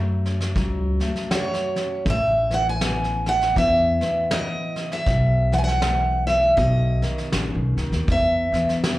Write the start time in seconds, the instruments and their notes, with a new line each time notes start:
Already playing: upright bass F#2, nylon-string guitar F#2 F#3 A3, steel-string acoustic guitar E5
0.25 nylon-string guitar C#4, snare
0.40 snare
0.56 upright bass C#2, nylon-string guitar F#3, kick, snare
1.00 nylon-string guitar A3, snare
1.16 snare
1.31 nylon-string guitar F#4, snare
1.35 steel-string acoustic guitar C#5
1.54 snare
1.76 nylon-string guitar C#4, snare
2.06 upright bass A1, nylon-string guitar A2, kick, snare
2.10 steel-string acoustic guitar E5
2.50 nylon-string guitar E3, steel-string acoustic guitar F#5, snare
2.69 steel-string acoustic guitar G#5
2.81 nylon-string guitar B3, snare
3.04 snare
3.26 nylon-string guitar E4, steel-string acoustic guitar F#5, snare
3.41 snare
3.56 upright bass E2, nylon-string guitar E3, steel-string acoustic guitar E5, kick, snare
4.01 nylon-string guitar B3, snare
4.31 nylon-string guitar E4, steel-string acoustic guitar D#5, snare
4.76 snare
4.92 steel-string acoustic guitar E5, snare
5.06 upright bass B1, nylon-string guitar B2, kick, snare
5.52 nylon-string guitar E3, steel-string acoustic guitar F#5, snare
5.58 steel-string acoustic guitar G#5
5.64 steel-string acoustic guitar F#5, snare
5.82 nylon-string guitar A3, snare
6.27 nylon-string guitar B3, steel-string acoustic guitar E5, snare
6.57 upright bass B1, nylon-string guitar B2, steel-string acoustic guitar D#5, kick, snare
7.02 nylon-string guitar D#3, snare
7.18 snare
7.32 upright bass A1, nylon-string guitar C#3, snare
7.55 upright bass B1
7.77 upright bass C#2, nylon-string guitar D#3, snare
7.92 upright bass D#2, snare
8.08 upright bass E2, nylon-string guitar E2, steel-string acoustic guitar E5, kick, snare
8.52 upright bass E2, nylon-string guitar E3, snare
8.69 snare
8.84 nylon-string guitar G#3, snare